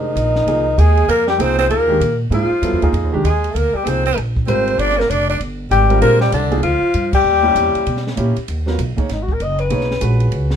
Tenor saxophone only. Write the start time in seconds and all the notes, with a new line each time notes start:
Already playing: D#3
0.78 G#3
1.08 A#3
1.27 G3
1.39 C4
1.58 C4
1.69 A#3
2.31 F3
3.23 G#3
3.50 A3 A#3
3.73 G3
3.85 C4
4.06 C4
4.47 C4
4.79 D4
4.97 A#3
5.10 D4
5.29 D4
5.70 G3
6.01 A#3
6.21 G3
6.33 D3
6.63 F3
7.14 G3